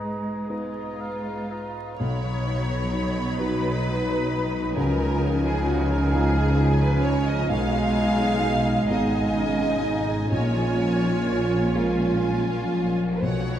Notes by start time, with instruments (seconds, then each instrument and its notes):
Already playing: grand piano G#2, cello section G#3, clarinet B4
0.00 oboe D#5, flute A#5
0.47 grand piano B3 D#4 B4, violin section F4, clarinet B4, oboe D#5
0.51 flute A#5
0.99 clarinet B4, oboe F5, flute A#5
1.50 clarinet B4, oboe D#5, flute A#5
1.98 double bass section B1, grand piano B1, harp B2, cello section B2, viola section F#3 D#4, violin section C#5 B5
2.23 harp F#3
2.47 harp D#4
2.70 harp F#3
2.93 harp D#4
3.17 harp F#3
3.39 harp B3, grand piano B3 D#4 F#4, clarinet D#4, violin section B4
3.62 harp F#3
3.85 harp G#3
4.09 harp F#3
4.31 harp B3
4.54 harp F#4
4.76 grand piano C#2, double bass section C#2, harp C#3, cello section C#3, viola section F3, clarinet C#4, violin section A#4 G#5
5.00 harp C#4
5.22 harp D#4
5.45 harp C#4, violin section G#4
5.68 harp D#4, violin section F#4
5.91 harp C#4, violin section A#4
6.12 grand piano G#3 D#4 F4, harp G#3, violin section G#4
6.36 harp C#4
6.59 harp D#4
6.82 harp C#4, violin section B4
7.04 harp G#3, violin section C#5
7.28 harp F4, violin section D#5
7.50 grand piano B1, double bass section B1, cello section B2, harp B2, clarinet G#3, viola section G#3 D#4, violin section F5 G#5
7.74 harp B3
7.96 harp D#4
8.20 harp B3
8.42 harp D#4
8.66 harp B3
8.89 double bass section G#1, cello section G#2, harp G#3, grand piano G#3 D#4 G#4, viola section G#3 D#4, clarinet B3, violin section D#5 G#5
9.13 harp B3
9.36 clarinet C#4, harp C#4
9.61 harp B3
9.84 harp G#3, clarinet D#4
10.07 harp G#4
10.31 grand piano A#1, double bass section A#1, harp A#2, cello section A#2, viola section C#4 F4, clarinet F4, violin section C#5 G#5
10.55 harp F3
10.79 harp F4
11.04 harp F3
11.28 harp F4
11.52 harp F3
11.75 grand piano G#3 F4 A#4, harp G#3, viola section C#4 F4, violin section F4 G#5
11.99 harp F3
12.23 harp F#3
12.49 harp F3
12.74 harp G#3
12.98 harp A#4
13.21 grand piano B1, double bass section B1, harp B2, cello section B2, viola section F#3 F#4, violin section C#5 F#5
13.46 harp B3